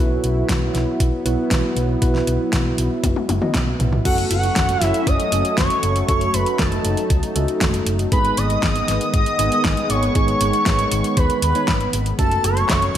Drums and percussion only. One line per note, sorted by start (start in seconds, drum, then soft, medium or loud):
0.24 closed hi-hat medium
0.49 kick loud
0.49 snare loud
0.49 closed hi-hat medium
0.75 snare soft
0.75 closed hi-hat medium
1.00 kick loud
1.00 closed hi-hat medium
1.26 closed hi-hat medium
1.51 kick loud
1.51 snare loud
1.51 closed hi-hat loud
1.77 closed hi-hat medium
2.02 kick loud
2.02 closed hi-hat medium
2.15 snare soft
2.27 closed hi-hat medium
2.53 kick loud
2.53 snare loud
2.53 closed hi-hat medium
2.78 closed hi-hat medium
3.04 kick loud
3.04 closed hi-hat loud
3.04 high tom medium
3.16 high tom medium
3.29 closed hi-hat medium
3.29 high tom medium
3.42 mid tom medium
3.54 kick loud
3.54 snare loud
3.54 closed hi-hat medium
3.54 mid tom medium
3.80 closed hi-hat medium
3.80 mid tom medium
3.93 mid tom medium
4.05 kick loud
4.05 closed hi-hat medium
4.05 crash loud
4.18 closed hi-hat soft
4.31 closed hi-hat medium
4.43 closed hi-hat soft
4.56 kick loud
4.56 snare loud
4.56 closed hi-hat medium
4.69 closed hi-hat soft
4.81 snare soft
4.81 closed hi-hat medium
4.94 closed hi-hat soft
5.07 kick loud
5.07 closed hi-hat medium
5.20 closed hi-hat soft
5.32 closed hi-hat loud
5.45 closed hi-hat soft
5.58 kick loud
5.58 snare loud
5.58 closed hi-hat medium
5.70 closed hi-hat soft
5.83 closed hi-hat medium
5.96 closed hi-hat soft
6.09 kick loud
6.09 closed hi-hat medium
6.21 closed hi-hat soft
6.34 closed hi-hat medium
6.46 closed hi-hat soft
6.59 kick loud
6.59 snare loud
6.59 closed hi-hat medium
6.72 closed hi-hat soft
6.85 closed hi-hat loud
6.97 closed hi-hat soft
7.10 kick loud
7.10 closed hi-hat medium
7.23 closed hi-hat soft
7.36 closed hi-hat loud
7.48 closed hi-hat soft
7.61 kick loud
7.61 snare loud
7.61 closed hi-hat medium
7.74 closed hi-hat soft
7.87 closed hi-hat medium
7.99 closed hi-hat soft
8.12 kick loud
8.12 closed hi-hat medium
8.25 closed hi-hat soft
8.37 closed hi-hat loud
8.50 closed hi-hat soft
8.63 kick loud
8.63 snare loud
8.63 closed hi-hat medium
8.76 closed hi-hat soft
8.88 snare soft
8.88 closed hi-hat medium
9.01 closed hi-hat soft
9.14 kick loud
9.14 closed hi-hat medium
9.26 closed hi-hat soft
9.39 closed hi-hat loud
9.52 closed hi-hat soft
9.65 kick loud
9.65 snare loud
9.65 closed hi-hat medium
9.77 closed hi-hat soft
9.90 closed hi-hat medium
10.03 closed hi-hat soft
10.15 kick loud
10.15 closed hi-hat medium
10.28 closed hi-hat soft
10.41 closed hi-hat loud
10.53 closed hi-hat soft
10.66 kick loud
10.66 snare loud
10.66 closed hi-hat medium
10.79 closed hi-hat soft
10.91 closed hi-hat medium
11.04 closed hi-hat soft
11.17 kick loud
11.17 closed hi-hat medium
11.30 closed hi-hat soft
11.42 closed hi-hat loud
11.55 closed hi-hat soft
11.68 kick loud
11.68 snare loud
11.68 closed hi-hat medium
11.81 closed hi-hat soft
11.93 closed hi-hat medium
12.06 closed hi-hat soft
12.19 kick loud
12.19 closed hi-hat medium
12.31 closed hi-hat soft
12.44 closed hi-hat medium
12.57 closed hi-hat soft
12.69 kick loud
12.69 snare loud
12.69 clap loud
12.69 closed hi-hat medium
12.82 closed hi-hat soft